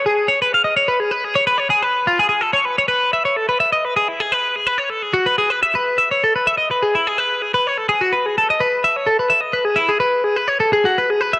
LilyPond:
\new Staff \with { instrumentName = "Clean electric guitar" } { \time 6/8 \key e \major \tempo 4. = 84 gis'8 cis''16 b'16 eis''16 dis''16 cis''16 b'16 gis'16 b'16 gis'16 cis''16 | b'16 cis''16 gis'16 b'8 eis'16 gis'16 gis'16 a'16 cis''16 b'16 cis''16 | b'8 e''16 cis''16 a'16 b'16 e''16 dis''16 b'16 gis'16 e'16 gis'16 | b'8 gis'16 b'16 cis''16 a'16 gis'16 fis'16 b'16 gis'16 b'16 e''16 |
b'8 e''16 cis''16 a'16 b'16 e''16 dis''16 b'16 gis'16 e'16 gis'16 | b'8 gis'16 b'16 cis''16 a'16 gis'16 fis'16 b'16 gis'16 a'16 dis''16 | b'8 e''16 cis''16 a'16 b'16 e''16 dis''16 b'16 gis'16 e'16 gis'16 | b'8 gis'16 b'16 cis''16 a'16 gis'16 fis'16 b'16 gis'16 b'16 e''16 | }